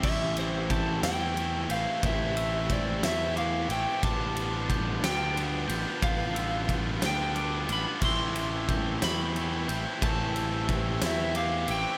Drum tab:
CC |x-----|------|------|------|
RD |-xxxxx|xxxxxx|xxxxxx|xxxxxx|
SD |---o--|---o--|---o--|---o--|
BD |o-o---|o-o---|o-o---|o-o---|

CC |x-----|------|
RD |-xxxxx|xxxxxx|
SD |---o--|---o--|
BD |o-o---|o-o---|